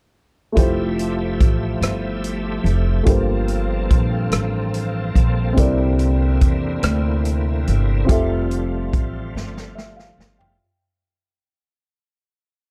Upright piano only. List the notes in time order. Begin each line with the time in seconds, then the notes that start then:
0.52 A3 E4 F4
0.57 G4 C5
3.03 G2 A3 F4 G4
3.08 A#3 A4 C5
5.53 C3 C4 E4 G4
5.58 A#4 D5
8.05 C4 F4 G4
8.10 A4 E5
9.75 E5
9.97 F5
10.39 G5